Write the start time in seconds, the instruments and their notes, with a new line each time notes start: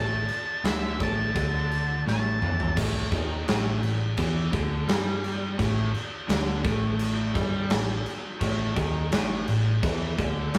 Already playing: picked electric bass A1, overdriven electric guitar A2, lead electric guitar A5
0.28 muted picked electric bass stroke, muted overdriven electric guitar stroke, crash
0.64 picked electric bass D2, overdriven electric guitar D3, lead electric guitar E5, snare, crash
0.99 picked electric bass A1, overdriven electric guitar A2, kick, crash
1.03 lead electric guitar A5
1.35 picked electric bass D2, overdriven electric guitar D3, kick, crash
1.71 crash
2.06 picked electric bass A1, overdriven electric guitar A2, lead electric guitar A5, snare
2.41 picked electric bass E2, overdriven electric guitar E3, mid tom
2.60 floor tom
2.76 picked electric bass A1, overdriven electric guitar A2, kick, crash
3.11 picked electric bass D#2, overdriven electric guitar D#3, kick, crash
3.47 picked electric bass A1, overdriven electric guitar A2, snare, crash
3.83 picked electric bass A1, overdriven electric guitar A2, crash
4.17 picked electric bass E2, overdriven electric guitar E3, kick, crash
4.52 picked electric bass D2, overdriven electric guitar D3, kick, crash
4.87 picked electric bass G2, overdriven electric guitar G3, snare, crash
5.24 crash
5.58 picked electric bass A1, overdriven electric guitar A2, kick, crash
5.94 muted overdriven electric guitar stroke, muted picked electric bass stroke, crash
6.28 picked electric bass D2, overdriven electric guitar D3, snare, crash
6.64 picked electric bass A1, overdriven electric guitar A2, kick, crash
6.99 crash
7.35 picked electric bass G2, overdriven electric guitar G3, kick, crash
7.70 picked electric bass A1, overdriven electric guitar A2, snare, crash
8.06 crash
8.41 picked electric bass A1, overdriven electric guitar A2, kick, crash
8.76 picked electric bass D#2, overdriven electric guitar D#3, kick, crash
9.12 picked electric bass A1, overdriven electric guitar A2, snare, crash
9.47 picked electric bass A1, overdriven electric guitar A2, crash
9.83 picked electric bass E2, overdriven electric guitar E3, kick, crash
10.18 picked electric bass D2, overdriven electric guitar D3, kick, crash
10.54 overdriven electric guitar G3, snare, crash